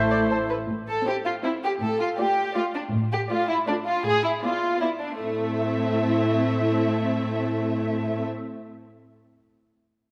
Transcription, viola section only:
Already playing: E4
1.06 C4 E4
1.44 C4 E4
2.19 A3 F4
2.57 A3 F4
3.31 A3 F4
3.69 A3 F4
4.43 B3 E4
4.82 B3 E4
5.21 C4 E4

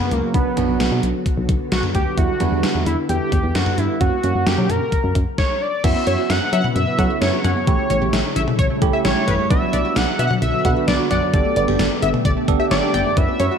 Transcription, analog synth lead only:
Already playing: B3
0.12 A#3
0.34 B3
1.72 F#4
1.95 G4
2.18 F#4
2.87 E4
3.09 G4
3.55 F#4
3.78 E4
4.01 F#4
4.47 G4
4.70 A#4
5.38 C#5
5.61 D5
5.84 E5
6.30 F#5
6.60 F#5
6.75 E5
7.21 C#5
7.44 C#5
9.05 C#5
9.50 E5
9.96 F#5
10.27 F#5
10.42 E5
10.87 D5
11.11 D5
11.33 D5
12.71 D5
13.17 E5

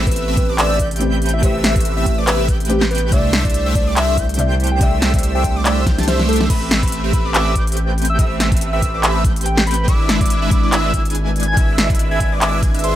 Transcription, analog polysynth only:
0.07 A3 C4 G4 B4 E5
0.28 A3 C4 G4 B4 E5
0.49 A3 C4 G4 B4 D5
0.58 A3 C4 G4 B4 E5
0.79 A3 G4
1.43 A3 C4 G4 B4 E5
1.76 A3 C4 G4 B4 E5
1.97 A3 C4 G4 B4 E5
2.18 A3 C4 G4 B4 D5
2.27 A3 C4 G4 B4 E5
2.48 A3 C4 G4 B4 G5
3.12 A3 D4 G4 C5 E5
3.45 A3 D4 G4 C5 E5
3.66 A3 D4 G4 C5 E5
3.87 A3 D4 G4 C5 D5
3.96 A3 D4 G4 C5 E5
4.17 A3 D4 G4 C5 G5
4.81 A3 D4 G4 C5 E5
5.14 A3 D4 G4 C5 E5
5.35 A3 D4 G4 C5 E5
5.56 A3 D4 G4 C5 D5
5.65 A3 D4 G4 C5 E5
5.98 A3 D4 G4 C5 A5
6.08 A3 D4 G4 C5 E5
6.40 A3 D4 G4 C5 E5
6.50 A3 C4 G4 B4 E5
6.83 A3 C4 G4 B4 E5
7.04 A3 C4 G4 B4 E5
7.25 A3 C4 G4 B4 D5
7.34 A3 C4 G4 B4 E5
7.56 G4
8.19 A3 C4 G4 B4 E5
8.52 A3 C4 G4 B4 E5
8.73 A3 C4 G4 B4 E5
8.94 A3 C4 G4 B4 D5
9.03 A3 C4 G4 B4 E5
9.24 A3 G4
9.88 G#3 D4 E4 B4 E5
10.21 G#3 E4 B4 E5
10.42 G#3 D4 E4 B4 E5
10.63 G#3 D4 E4 B4 D5
10.73 G#3 D4 E4 B4 E5
10.94 G#3 D4 E4 B4 G#5
11.57 G#3 D4 E4 B4 E5
11.90 G#3 E4 B4 E5
12.11 G#3 D4 E4 B4 E5
12.32 G#3 D4 E4 B4 D5
12.41 G#3 D4 E4 B4 E5
12.62 G#3 D4 E4 B4 G#5
12.74 G#3 D4 E4 B4 E5
12.84 G#3 D4 E4 B4 E5

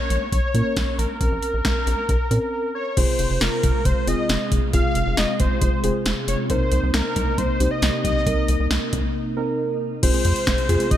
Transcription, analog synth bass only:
0.10 A#1
0.32 A#1
0.54 A#2
0.77 A#1
0.99 A#1
1.21 A#1
1.32 A#1
1.54 A#1
1.65 A#1
1.87 A#1
2.09 A#1
2.31 A#2
2.97 F1
3.19 F1
3.30 F1
3.41 F1
3.63 F1
3.85 F1
4.07 F1
4.29 F1
4.51 F1
4.74 F1
4.96 F1
5.06 F1
5.18 F1
5.40 F1
5.62 F1
5.84 F1
6.06 F1
6.28 F1
6.50 C2
6.72 C2
6.83 C2
6.94 C2
7.16 C2
7.38 C2
7.60 C2
7.82 C2
8.05 C2
8.27 C2
8.49 C2
8.60 C2
8.71 C2
8.93 C2
10.03 F1
10.25 F2
10.47 F1
10.69 F2
10.91 F1

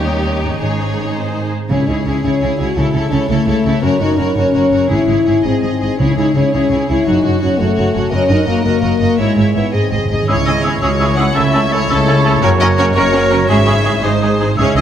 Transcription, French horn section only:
Already playing: G3 C#4
0.60 D#3 C#4
1.16 C4
1.71 C#4
1.88 D#4
2.07 C#4
2.24 C#4
2.58 F#4
2.77 E4
3.11 C#4
3.29 A3
3.82 C#4
4.01 D#4
4.19 C#4
4.36 C#4
4.90 E4
5.45 C4
5.99 C#4
6.17 D#4
6.36 C#4
6.55 C#4
6.89 E4
7.07 D#4
7.41 C#4
7.59 A3
8.13 C#4
8.31 D#4
8.48 A#3
8.65 A#3
9.19 G#3
9.55 B3
9.73 C4
10.29 C#4 E4
10.81 C#4 E4
11.35 C#4 E4
11.89 C#4 E4
12.43 C#4 F#4
12.96 C#4 F#4
13.49 C#4 G#4
14.02 G#3 G#4
14.58 C#4 G#4

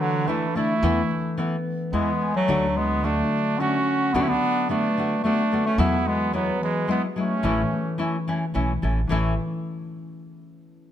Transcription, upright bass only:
0.83 E2
1.93 E2
2.49 D2
4.14 D2
5.78 E2
7.43 A1
8.55 B1
8.83 A1
9.09 A1

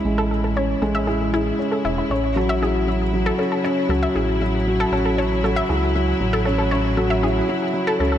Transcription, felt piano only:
Already playing: G#3 C#4 E4
0.05 G#3
0.56 C#4
0.82 G#3
1.07 E4
1.33 G#4
1.59 C#4
2.11 C#4
2.36 F#3
2.62 E4
2.87 F#3
3.13 F#3
3.38 C#4
3.64 C#4
3.89 F#3
4.15 E4
4.41 F#3
4.67 F#3
4.92 C#4
5.18 C#4
5.44 F#3
5.70 E4
5.96 F#3
6.21 F#3
6.46 C#4
6.72 C#4
6.97 F#3
7.23 E4
7.49 F#3
7.74 F#3
7.99 C#4

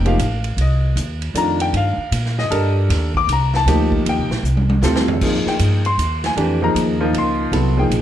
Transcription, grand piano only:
0.05 F3 A#3 D#4 G4 F5
0.61 D#5
1.34 D#3 A3 D4 F4 A#5
1.61 G5
1.77 F5
2.39 D#5
2.51 D4 G4 A4 A#4
3.17 D6
3.33 A#5
3.56 A5
3.67 F3 A#3 D#4 G4
4.09 G5
4.83 G3 C4 F4 A4
5.22 F3 A#3 D#4 G#4
5.48 G5
5.86 C6
6.26 G#5
6.36 E3 A3 D4 G4
6.62 F3 A#3 D#4 G#4 A#5
7.00 F3 A#3 D#4 F4
7.18 C6
7.52 F#3 B3 E4 A4
7.77 F3 A#3 D#4 G#4 G5

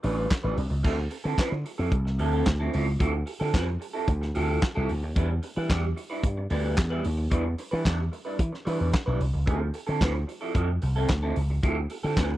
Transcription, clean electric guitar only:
0.03 G3 D4 F4 B4
0.17 G3 D4 F4 B4
0.30 muted clean electric guitar stroke
0.44 G3 D4 F4 B4
0.57 muted clean electric guitar stroke
0.70 muted clean electric guitar stroke
0.83 F3 C4 E4 A4
0.97 muted clean electric guitar stroke
1.10 muted clean electric guitar stroke
1.24 F3 C4 E4 A4
1.37 F3 C4 E4 B4
1.51 muted clean electric guitar stroke
1.65 muted clean electric guitar stroke
1.78 F3 C4 E4 A4
1.92 muted clean electric guitar stroke
2.05 muted clean electric guitar stroke
2.19 F3 C4 E4 A4
2.33 F3 C4 E4 A4
2.46 muted clean electric guitar stroke
2.60 F3 C4 E4 A4
2.73 F3 C4 E4 A4
2.87 muted clean electric guitar stroke
2.99 F3 C4 E4 A4
3.13 muted clean electric guitar stroke
3.26 muted clean electric guitar stroke
3.40 F3 C4 E4 A4
3.54 F3 C4 E4 B4
3.67 muted clean electric guitar stroke
3.80 muted clean electric guitar stroke
3.93 F3 C4 E4 A4
4.08 muted clean electric guitar stroke
4.21 muted clean electric guitar stroke
4.35 F3 C4 E4 A4
4.49 F3 C4 E4 A4
4.75 F3 C4 E4 A4
4.89 muted clean electric guitar stroke
5.03 muted clean electric guitar stroke
5.16 G3 D4 E4 B4
5.29 muted clean electric guitar stroke
5.43 muted clean electric guitar stroke
5.56 G3 D4 E4 B4
5.69 G3 D4 E4 D5
5.83 muted clean electric guitar stroke
5.96 muted clean electric guitar stroke
6.10 G3 D4 E4 B4
6.24 muted clean electric guitar stroke
6.38 muted clean electric guitar stroke
6.50 G3 D4 E4 B4
6.64 G3 D4 E4 B4
6.77 muted clean electric guitar stroke
6.90 G3 D4 E4 B4
7.04 muted clean electric guitar stroke
7.18 muted clean electric guitar stroke
7.31 G3 D4 E4 B4
7.45 muted clean electric guitar stroke
7.59 muted clean electric guitar stroke
7.71 G3 D4 E4 B4
7.85 G3 D4 E4 D5
7.99 muted clean electric guitar stroke
8.12 muted clean electric guitar stroke
8.25 G3 D4 E4 B4
8.40 muted clean electric guitar stroke
8.52 muted clean electric guitar stroke
8.65 G3 D4 E4 B4
8.79 G3 D4 E4 B4
8.92 muted clean electric guitar stroke
9.06 G3 D4 E4 B4
9.20 muted clean electric guitar stroke
9.34 muted clean electric guitar stroke
9.46 F3 C4 E4 A4
9.60 muted clean electric guitar stroke
9.74 muted clean electric guitar stroke
9.87 F3 C4 E4 A4
10.01 F3 C4 E4 B4
10.14 muted clean electric guitar stroke
10.27 muted clean electric guitar stroke
10.41 F3 C4 E4 A4
10.54 F3 C4 E4 A4
10.68 muted clean electric guitar stroke
10.82 muted clean electric guitar stroke
10.96 F3 C4 E4 A4
11.09 muted clean electric guitar stroke
11.23 F3 C4 E4 A4
11.36 muted clean electric guitar stroke
11.50 muted clean electric guitar stroke
11.63 F3 C4 E4 A4
11.77 muted clean electric guitar stroke
11.90 muted clean electric guitar stroke
12.03 F3 C4 E4 A4
12.17 F3 C4 E4 B4
12.31 muted clean electric guitar stroke

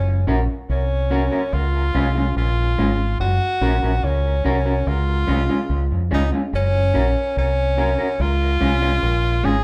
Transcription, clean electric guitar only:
0.27 C#4 F#4 A#4
1.11 C#4 F#4 A#4
1.31 C#4 F#4 A#4
1.94 G#3 C#4 F4
2.15 G#3 C#4 F4
2.78 G#3 C#4 F4
3.61 C#4 F#4 A#4
3.83 C#4 F#4 A#4
4.44 C#4 F#4 A#4
4.65 C#4 F#4 A#4
5.27 G#3 C#4 F4
5.49 G#3 C#4 F4
6.11 G#3 C#4 F4
6.32 G#3 C#4 F4
6.94 C#4 F#4 A#4
7.77 C#4 F#4 A#4
7.98 C#4 F#4 A#4
8.60 G#3 C#4 F4
8.82 G#3 C#4 F4
9.43 G#3 C#4 F4

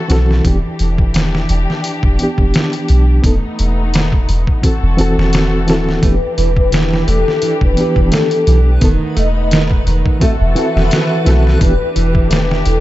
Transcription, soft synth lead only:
6.04 B4
6.58 B4
7.08 A4
7.62 B4
8.14 A4
9.18 D#5
10.22 E5
11.62 B4
12.16 B4
12.67 A4

